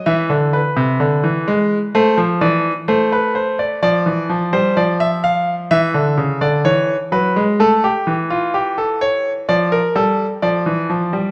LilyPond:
<<
  \new Staff \with { instrumentName = "Grand piano" } { \time 4/4 \key d \minor \tempo 4 = 64 e''8 b'4. c''8 d''8 c''16 b'16 c''16 d''16 | d''8. c''16 d''16 e''16 f''8 e''8. d''16 cis''8 b'8 | a'16 g'8 f'16 g'16 a'16 cis''8 d''16 bes'16 a'8 d''4 | }
  \new Staff \with { instrumentName = "Grand piano" } { \clef bass \time 4/4 \key d \minor e16 d8 c16 d16 e16 gis8 a16 f16 e8 a4 | f16 e16 f16 g16 f4 e16 d16 cis16 d16 e8 fis16 gis16 | a8 e4. f8 g8 f16 e16 f16 g16 | }
>>